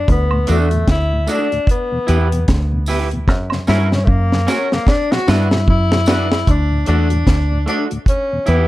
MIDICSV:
0, 0, Header, 1, 6, 480
1, 0, Start_track
1, 0, Key_signature, 2, "major"
1, 0, Tempo, 799254
1, 49, Time_signature, 4, 2, 24, 8
1, 5212, End_track
2, 0, Start_track
2, 0, Title_t, "Clean electric guitar"
2, 0, Program_c, 0, 27
2, 284, Note_on_c, 0, 57, 82
2, 288, Note_on_c, 0, 62, 98
2, 294, Note_on_c, 0, 66, 93
2, 402, Note_off_c, 0, 57, 0
2, 404, Note_off_c, 0, 62, 0
2, 407, Note_off_c, 0, 66, 0
2, 763, Note_on_c, 0, 57, 83
2, 769, Note_on_c, 0, 62, 81
2, 773, Note_on_c, 0, 66, 88
2, 882, Note_off_c, 0, 57, 0
2, 884, Note_off_c, 0, 62, 0
2, 886, Note_off_c, 0, 66, 0
2, 1242, Note_on_c, 0, 64, 76
2, 1250, Note_on_c, 0, 67, 85
2, 1254, Note_on_c, 0, 71, 88
2, 1361, Note_off_c, 0, 64, 0
2, 1365, Note_off_c, 0, 67, 0
2, 1367, Note_off_c, 0, 71, 0
2, 1729, Note_on_c, 0, 64, 83
2, 1734, Note_on_c, 0, 67, 82
2, 1738, Note_on_c, 0, 71, 94
2, 1845, Note_off_c, 0, 64, 0
2, 1847, Note_off_c, 0, 67, 0
2, 1849, Note_off_c, 0, 71, 0
2, 2207, Note_on_c, 0, 61, 90
2, 2210, Note_on_c, 0, 66, 94
2, 2217, Note_on_c, 0, 70, 99
2, 2323, Note_off_c, 0, 61, 0
2, 2325, Note_off_c, 0, 66, 0
2, 2328, Note_off_c, 0, 70, 0
2, 2683, Note_on_c, 0, 61, 87
2, 2690, Note_on_c, 0, 66, 90
2, 2694, Note_on_c, 0, 70, 96
2, 2801, Note_off_c, 0, 61, 0
2, 2805, Note_off_c, 0, 66, 0
2, 2807, Note_off_c, 0, 70, 0
2, 3168, Note_on_c, 0, 62, 80
2, 3173, Note_on_c, 0, 66, 81
2, 3178, Note_on_c, 0, 71, 95
2, 3284, Note_off_c, 0, 62, 0
2, 3286, Note_off_c, 0, 66, 0
2, 3289, Note_off_c, 0, 71, 0
2, 3647, Note_on_c, 0, 62, 86
2, 3655, Note_on_c, 0, 66, 101
2, 3659, Note_on_c, 0, 71, 94
2, 3763, Note_off_c, 0, 62, 0
2, 3767, Note_off_c, 0, 66, 0
2, 3769, Note_off_c, 0, 71, 0
2, 4128, Note_on_c, 0, 57, 89
2, 4135, Note_on_c, 0, 62, 82
2, 4137, Note_on_c, 0, 66, 96
2, 4244, Note_off_c, 0, 57, 0
2, 4247, Note_off_c, 0, 62, 0
2, 4248, Note_off_c, 0, 66, 0
2, 4602, Note_on_c, 0, 57, 75
2, 4609, Note_on_c, 0, 62, 77
2, 4615, Note_on_c, 0, 66, 87
2, 4721, Note_off_c, 0, 57, 0
2, 4724, Note_off_c, 0, 62, 0
2, 4727, Note_off_c, 0, 66, 0
2, 5080, Note_on_c, 0, 64, 84
2, 5087, Note_on_c, 0, 67, 88
2, 5093, Note_on_c, 0, 71, 92
2, 5200, Note_off_c, 0, 64, 0
2, 5203, Note_off_c, 0, 67, 0
2, 5206, Note_off_c, 0, 71, 0
2, 5212, End_track
3, 0, Start_track
3, 0, Title_t, "Tenor saxophone"
3, 0, Program_c, 1, 66
3, 68, Note_on_c, 1, 59, 88
3, 303, Note_on_c, 1, 57, 89
3, 312, Note_off_c, 1, 59, 0
3, 536, Note_off_c, 1, 57, 0
3, 547, Note_on_c, 1, 64, 106
3, 787, Note_on_c, 1, 62, 91
3, 796, Note_off_c, 1, 64, 0
3, 1018, Note_off_c, 1, 62, 0
3, 1028, Note_on_c, 1, 59, 87
3, 1474, Note_off_c, 1, 59, 0
3, 2215, Note_on_c, 1, 64, 95
3, 2367, Note_on_c, 1, 61, 88
3, 2376, Note_off_c, 1, 64, 0
3, 2429, Note_on_c, 1, 57, 69
3, 2438, Note_off_c, 1, 61, 0
3, 2457, Note_on_c, 1, 58, 88
3, 2466, Note_off_c, 1, 57, 0
3, 2698, Note_on_c, 1, 61, 91
3, 2707, Note_off_c, 1, 58, 0
3, 2841, Note_on_c, 1, 58, 92
3, 2850, Note_off_c, 1, 61, 0
3, 2933, Note_on_c, 1, 62, 105
3, 2942, Note_off_c, 1, 58, 0
3, 3077, Note_on_c, 1, 66, 105
3, 3086, Note_off_c, 1, 62, 0
3, 3181, Note_on_c, 1, 64, 103
3, 3190, Note_off_c, 1, 66, 0
3, 3415, Note_off_c, 1, 64, 0
3, 3423, Note_on_c, 1, 64, 113
3, 3905, Note_on_c, 1, 62, 102
3, 3914, Note_off_c, 1, 64, 0
3, 4129, Note_off_c, 1, 62, 0
3, 4133, Note_on_c, 1, 62, 97
3, 4587, Note_off_c, 1, 62, 0
3, 4618, Note_on_c, 1, 62, 92
3, 4714, Note_off_c, 1, 62, 0
3, 4859, Note_on_c, 1, 61, 99
3, 5097, Note_on_c, 1, 59, 88
3, 5106, Note_off_c, 1, 61, 0
3, 5212, Note_off_c, 1, 59, 0
3, 5212, End_track
4, 0, Start_track
4, 0, Title_t, "Tonewheel organ"
4, 0, Program_c, 2, 16
4, 197, Note_on_c, 2, 38, 55
4, 198, Note_on_c, 2, 45, 58
4, 237, Note_off_c, 2, 38, 0
4, 238, Note_off_c, 2, 45, 0
4, 295, Note_on_c, 2, 57, 73
4, 296, Note_on_c, 2, 62, 69
4, 299, Note_on_c, 2, 66, 86
4, 355, Note_off_c, 2, 57, 0
4, 356, Note_off_c, 2, 62, 0
4, 357, Note_off_c, 2, 66, 0
4, 442, Note_on_c, 2, 45, 65
4, 443, Note_on_c, 2, 38, 65
4, 480, Note_off_c, 2, 45, 0
4, 481, Note_off_c, 2, 38, 0
4, 678, Note_on_c, 2, 45, 63
4, 679, Note_on_c, 2, 38, 68
4, 718, Note_off_c, 2, 38, 0
4, 718, Note_off_c, 2, 45, 0
4, 774, Note_on_c, 2, 57, 80
4, 775, Note_on_c, 2, 62, 68
4, 777, Note_on_c, 2, 66, 81
4, 835, Note_off_c, 2, 57, 0
4, 835, Note_off_c, 2, 62, 0
4, 836, Note_off_c, 2, 66, 0
4, 916, Note_on_c, 2, 38, 61
4, 916, Note_on_c, 2, 45, 63
4, 957, Note_off_c, 2, 38, 0
4, 957, Note_off_c, 2, 45, 0
4, 1152, Note_on_c, 2, 47, 65
4, 1153, Note_on_c, 2, 40, 63
4, 1195, Note_off_c, 2, 47, 0
4, 1196, Note_off_c, 2, 40, 0
4, 1250, Note_on_c, 2, 59, 77
4, 1253, Note_on_c, 2, 67, 85
4, 1254, Note_on_c, 2, 64, 72
4, 1312, Note_off_c, 2, 59, 0
4, 1314, Note_off_c, 2, 67, 0
4, 1315, Note_off_c, 2, 64, 0
4, 1396, Note_on_c, 2, 40, 58
4, 1398, Note_on_c, 2, 47, 60
4, 1437, Note_off_c, 2, 40, 0
4, 1438, Note_off_c, 2, 47, 0
4, 1637, Note_on_c, 2, 40, 61
4, 1637, Note_on_c, 2, 47, 62
4, 1677, Note_off_c, 2, 40, 0
4, 1677, Note_off_c, 2, 47, 0
4, 1735, Note_on_c, 2, 59, 85
4, 1737, Note_on_c, 2, 64, 77
4, 1739, Note_on_c, 2, 67, 90
4, 1795, Note_off_c, 2, 59, 0
4, 1796, Note_off_c, 2, 64, 0
4, 1797, Note_off_c, 2, 67, 0
4, 1878, Note_on_c, 2, 40, 58
4, 1879, Note_on_c, 2, 47, 62
4, 1918, Note_off_c, 2, 40, 0
4, 1918, Note_off_c, 2, 47, 0
4, 2118, Note_on_c, 2, 49, 56
4, 2121, Note_on_c, 2, 42, 62
4, 2158, Note_off_c, 2, 49, 0
4, 2159, Note_off_c, 2, 42, 0
4, 2211, Note_on_c, 2, 58, 79
4, 2214, Note_on_c, 2, 61, 71
4, 2218, Note_on_c, 2, 66, 83
4, 2273, Note_off_c, 2, 58, 0
4, 2275, Note_off_c, 2, 61, 0
4, 2277, Note_off_c, 2, 66, 0
4, 2355, Note_on_c, 2, 42, 63
4, 2356, Note_on_c, 2, 49, 66
4, 2396, Note_off_c, 2, 42, 0
4, 2396, Note_off_c, 2, 49, 0
4, 2593, Note_on_c, 2, 42, 64
4, 2593, Note_on_c, 2, 49, 67
4, 2635, Note_off_c, 2, 42, 0
4, 2635, Note_off_c, 2, 49, 0
4, 2690, Note_on_c, 2, 58, 75
4, 2690, Note_on_c, 2, 61, 66
4, 2693, Note_on_c, 2, 66, 85
4, 2752, Note_off_c, 2, 58, 0
4, 2753, Note_off_c, 2, 61, 0
4, 2754, Note_off_c, 2, 66, 0
4, 2836, Note_on_c, 2, 42, 65
4, 2836, Note_on_c, 2, 49, 60
4, 2877, Note_off_c, 2, 42, 0
4, 2877, Note_off_c, 2, 49, 0
4, 3077, Note_on_c, 2, 47, 60
4, 3078, Note_on_c, 2, 54, 66
4, 3117, Note_off_c, 2, 47, 0
4, 3118, Note_off_c, 2, 54, 0
4, 3166, Note_on_c, 2, 62, 69
4, 3167, Note_on_c, 2, 59, 73
4, 3170, Note_on_c, 2, 66, 84
4, 3231, Note_off_c, 2, 59, 0
4, 3231, Note_off_c, 2, 62, 0
4, 3233, Note_off_c, 2, 66, 0
4, 3308, Note_on_c, 2, 47, 59
4, 3308, Note_on_c, 2, 54, 58
4, 3352, Note_off_c, 2, 54, 0
4, 3353, Note_off_c, 2, 47, 0
4, 3553, Note_on_c, 2, 47, 58
4, 3553, Note_on_c, 2, 54, 63
4, 3595, Note_off_c, 2, 47, 0
4, 3595, Note_off_c, 2, 54, 0
4, 3650, Note_on_c, 2, 59, 86
4, 3651, Note_on_c, 2, 62, 79
4, 3655, Note_on_c, 2, 66, 94
4, 3713, Note_off_c, 2, 59, 0
4, 3713, Note_off_c, 2, 62, 0
4, 3715, Note_off_c, 2, 66, 0
4, 4035, Note_on_c, 2, 38, 57
4, 4037, Note_on_c, 2, 45, 56
4, 4076, Note_off_c, 2, 38, 0
4, 4077, Note_off_c, 2, 45, 0
4, 4133, Note_on_c, 2, 57, 76
4, 4136, Note_on_c, 2, 62, 64
4, 4138, Note_on_c, 2, 66, 76
4, 4194, Note_off_c, 2, 57, 0
4, 4195, Note_off_c, 2, 62, 0
4, 4196, Note_off_c, 2, 66, 0
4, 4274, Note_on_c, 2, 38, 61
4, 4276, Note_on_c, 2, 45, 57
4, 4316, Note_off_c, 2, 38, 0
4, 4317, Note_off_c, 2, 45, 0
4, 4516, Note_on_c, 2, 45, 61
4, 4517, Note_on_c, 2, 38, 62
4, 4556, Note_off_c, 2, 45, 0
4, 4557, Note_off_c, 2, 38, 0
4, 4615, Note_on_c, 2, 57, 77
4, 4615, Note_on_c, 2, 62, 62
4, 4616, Note_on_c, 2, 66, 78
4, 4675, Note_off_c, 2, 57, 0
4, 4675, Note_off_c, 2, 62, 0
4, 4675, Note_off_c, 2, 66, 0
4, 4753, Note_on_c, 2, 38, 53
4, 4755, Note_on_c, 2, 45, 57
4, 4795, Note_off_c, 2, 38, 0
4, 4796, Note_off_c, 2, 45, 0
4, 4999, Note_on_c, 2, 47, 60
4, 5000, Note_on_c, 2, 40, 59
4, 5038, Note_off_c, 2, 40, 0
4, 5038, Note_off_c, 2, 47, 0
4, 5092, Note_on_c, 2, 59, 70
4, 5092, Note_on_c, 2, 64, 67
4, 5098, Note_on_c, 2, 67, 80
4, 5153, Note_off_c, 2, 59, 0
4, 5153, Note_off_c, 2, 64, 0
4, 5156, Note_off_c, 2, 67, 0
4, 5212, End_track
5, 0, Start_track
5, 0, Title_t, "Fingered electric bass"
5, 0, Program_c, 3, 33
5, 54, Note_on_c, 3, 38, 107
5, 281, Note_off_c, 3, 38, 0
5, 297, Note_on_c, 3, 40, 91
5, 523, Note_off_c, 3, 40, 0
5, 530, Note_on_c, 3, 38, 88
5, 759, Note_off_c, 3, 38, 0
5, 1254, Note_on_c, 3, 40, 94
5, 1481, Note_off_c, 3, 40, 0
5, 1494, Note_on_c, 3, 38, 101
5, 1973, Note_off_c, 3, 38, 0
5, 1973, Note_on_c, 3, 42, 101
5, 2201, Note_off_c, 3, 42, 0
5, 2213, Note_on_c, 3, 43, 94
5, 2441, Note_off_c, 3, 43, 0
5, 2450, Note_on_c, 3, 42, 108
5, 2679, Note_off_c, 3, 42, 0
5, 3172, Note_on_c, 3, 43, 91
5, 3400, Note_off_c, 3, 43, 0
5, 3412, Note_on_c, 3, 42, 105
5, 3870, Note_off_c, 3, 42, 0
5, 3893, Note_on_c, 3, 38, 101
5, 4120, Note_off_c, 3, 38, 0
5, 4134, Note_on_c, 3, 40, 89
5, 4361, Note_off_c, 3, 40, 0
5, 4369, Note_on_c, 3, 38, 82
5, 4598, Note_off_c, 3, 38, 0
5, 5092, Note_on_c, 3, 40, 91
5, 5212, Note_off_c, 3, 40, 0
5, 5212, End_track
6, 0, Start_track
6, 0, Title_t, "Drums"
6, 49, Note_on_c, 9, 36, 118
6, 49, Note_on_c, 9, 42, 82
6, 109, Note_off_c, 9, 36, 0
6, 109, Note_off_c, 9, 42, 0
6, 185, Note_on_c, 9, 76, 67
6, 245, Note_off_c, 9, 76, 0
6, 283, Note_on_c, 9, 42, 82
6, 293, Note_on_c, 9, 54, 59
6, 343, Note_off_c, 9, 42, 0
6, 353, Note_off_c, 9, 54, 0
6, 427, Note_on_c, 9, 42, 54
6, 487, Note_off_c, 9, 42, 0
6, 526, Note_on_c, 9, 36, 115
6, 526, Note_on_c, 9, 42, 96
6, 528, Note_on_c, 9, 38, 97
6, 586, Note_off_c, 9, 36, 0
6, 586, Note_off_c, 9, 42, 0
6, 588, Note_off_c, 9, 38, 0
6, 765, Note_on_c, 9, 54, 76
6, 776, Note_on_c, 9, 42, 68
6, 826, Note_off_c, 9, 54, 0
6, 836, Note_off_c, 9, 42, 0
6, 914, Note_on_c, 9, 42, 45
6, 974, Note_off_c, 9, 42, 0
6, 1004, Note_on_c, 9, 36, 114
6, 1017, Note_on_c, 9, 42, 86
6, 1064, Note_off_c, 9, 36, 0
6, 1077, Note_off_c, 9, 42, 0
6, 1248, Note_on_c, 9, 54, 47
6, 1249, Note_on_c, 9, 42, 82
6, 1308, Note_off_c, 9, 54, 0
6, 1309, Note_off_c, 9, 42, 0
6, 1396, Note_on_c, 9, 42, 66
6, 1456, Note_off_c, 9, 42, 0
6, 1489, Note_on_c, 9, 42, 97
6, 1491, Note_on_c, 9, 36, 112
6, 1494, Note_on_c, 9, 38, 121
6, 1549, Note_off_c, 9, 42, 0
6, 1551, Note_off_c, 9, 36, 0
6, 1554, Note_off_c, 9, 38, 0
6, 1720, Note_on_c, 9, 54, 70
6, 1725, Note_on_c, 9, 46, 75
6, 1780, Note_off_c, 9, 54, 0
6, 1785, Note_off_c, 9, 46, 0
6, 1870, Note_on_c, 9, 42, 53
6, 1930, Note_off_c, 9, 42, 0
6, 1968, Note_on_c, 9, 36, 122
6, 1973, Note_on_c, 9, 38, 61
6, 2028, Note_off_c, 9, 36, 0
6, 2033, Note_off_c, 9, 38, 0
6, 2102, Note_on_c, 9, 76, 70
6, 2115, Note_on_c, 9, 38, 51
6, 2162, Note_off_c, 9, 76, 0
6, 2175, Note_off_c, 9, 38, 0
6, 2205, Note_on_c, 9, 54, 59
6, 2211, Note_on_c, 9, 38, 63
6, 2265, Note_off_c, 9, 54, 0
6, 2271, Note_off_c, 9, 38, 0
6, 2356, Note_on_c, 9, 38, 60
6, 2416, Note_off_c, 9, 38, 0
6, 2446, Note_on_c, 9, 36, 109
6, 2506, Note_off_c, 9, 36, 0
6, 2596, Note_on_c, 9, 38, 59
6, 2657, Note_off_c, 9, 38, 0
6, 2689, Note_on_c, 9, 54, 75
6, 2691, Note_on_c, 9, 38, 77
6, 2749, Note_off_c, 9, 54, 0
6, 2751, Note_off_c, 9, 38, 0
6, 2835, Note_on_c, 9, 38, 67
6, 2895, Note_off_c, 9, 38, 0
6, 2923, Note_on_c, 9, 36, 116
6, 2930, Note_on_c, 9, 38, 88
6, 2983, Note_off_c, 9, 36, 0
6, 2990, Note_off_c, 9, 38, 0
6, 3074, Note_on_c, 9, 38, 88
6, 3134, Note_off_c, 9, 38, 0
6, 3169, Note_on_c, 9, 54, 43
6, 3172, Note_on_c, 9, 38, 94
6, 3229, Note_off_c, 9, 54, 0
6, 3232, Note_off_c, 9, 38, 0
6, 3311, Note_on_c, 9, 38, 88
6, 3371, Note_off_c, 9, 38, 0
6, 3409, Note_on_c, 9, 36, 108
6, 3469, Note_off_c, 9, 36, 0
6, 3554, Note_on_c, 9, 38, 87
6, 3614, Note_off_c, 9, 38, 0
6, 3640, Note_on_c, 9, 54, 79
6, 3650, Note_on_c, 9, 38, 104
6, 3700, Note_off_c, 9, 54, 0
6, 3710, Note_off_c, 9, 38, 0
6, 3793, Note_on_c, 9, 38, 88
6, 3853, Note_off_c, 9, 38, 0
6, 3888, Note_on_c, 9, 36, 118
6, 3888, Note_on_c, 9, 42, 82
6, 3948, Note_off_c, 9, 36, 0
6, 3948, Note_off_c, 9, 42, 0
6, 4122, Note_on_c, 9, 42, 74
6, 4182, Note_off_c, 9, 42, 0
6, 4266, Note_on_c, 9, 42, 52
6, 4326, Note_off_c, 9, 42, 0
6, 4365, Note_on_c, 9, 36, 115
6, 4367, Note_on_c, 9, 42, 89
6, 4369, Note_on_c, 9, 38, 95
6, 4425, Note_off_c, 9, 36, 0
6, 4427, Note_off_c, 9, 42, 0
6, 4429, Note_off_c, 9, 38, 0
6, 4610, Note_on_c, 9, 42, 61
6, 4670, Note_off_c, 9, 42, 0
6, 4750, Note_on_c, 9, 42, 45
6, 4810, Note_off_c, 9, 42, 0
6, 4841, Note_on_c, 9, 36, 110
6, 4853, Note_on_c, 9, 42, 87
6, 4901, Note_off_c, 9, 36, 0
6, 4913, Note_off_c, 9, 42, 0
6, 5084, Note_on_c, 9, 42, 78
6, 5144, Note_off_c, 9, 42, 0
6, 5212, End_track
0, 0, End_of_file